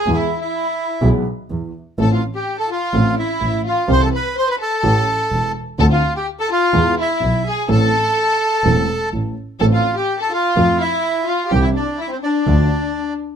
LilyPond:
<<
  \new Staff \with { instrumentName = "Bandoneon" } { \time 4/4 \key a \minor \tempo 4 = 126 <gis' gis''>16 <e' e''>8 <e' e''>4. r4. r16 | <a' a''>16 <f' f''>8 <g' g''>8 <a' a''>16 <f' f''>4 <e' e''>4 <f' f''>8 | <c'' c'''>16 <a' a''>16 <b' b''>8 <c'' c'''>16 <b' b''>16 <a' a''>2 r8 | <a' a''>16 <f' f''>8 <g' g''>8 <a' a''>16 <f' f''>4 <e' e''>4 <gis' gis''>8 |
<a' a''>2. r4 | <a' a''>16 <f' f''>8 <g' g''>8 <a' a''>16 <f' f''>4 <e' e''>4 <f' f''>8 | <g' g''>16 <e' e''>16 <d' d''>8 <e' e''>16 <c' c''>16 <d' d''>2 r8 | }
  \new Staff \with { instrumentName = "Violin section" } { \time 4/4 \key a \minor gis'16 e'8 e'4. r4. r16 | a'16 f'8 g'8 a'16 f'4 e'4 f'8 | c''16 a'16 b'8 c''16 b'16 a'2 r8 | a'16 f'8 g'8 a'16 f'4 e'4 gis'8 |
a'2. r4 | a'16 f'8 g'8 a'16 f'4 e'4 f'8 | g'16 e'16 d'8 e'16 c'16 d'2 r8 | }
  \new Staff \with { instrumentName = "Grand piano" } { \clef bass \time 4/4 \key a \minor <e, e gis b gis'>8 r4. <b,, b, e gis b gis'>8 r8 <e, e>8 r8 | <a,, a, e a c' a'>8 r4. <a,, a, f a c' a'>8 r8 <a,, a,>8 r8 | <c, c e g c' g'>8 r4. <a,, a, e a cis' g'>8 r8 <e,, e,>8 r8 | <d, d a c' f'>8 r4. <e, e gis b gis'>8 r8 <b,, b,>8 r8 |
<a,, a, e a c' a'>8 r4. <e,, e, e a c' a'>8 r8 <a,, a,>8 r8 | <a,, a, e a c' a'>8 r4. <f, f a c' a'>8 r4. | <c, c e g c' g'>8 r4. <d, d f a f'>8 r4. | }
  \new Staff \with { instrumentName = "Double bass" } { \clef bass \time 4/4 \key a \minor e,8 r4. b,,8 r8 e,8 r8 | a,,8 r4. a,,8 r8 a,,8 r8 | c,8 r4. a,,8 r8 e,,8 r8 | d,8 r4. e,8 r8 b,,8 r8 |
a,,8 r4. e,,8 r8 a,,8 r8 | a,,8 r4. f,8 r4. | c,8 r4. d,8 r4. | }
>>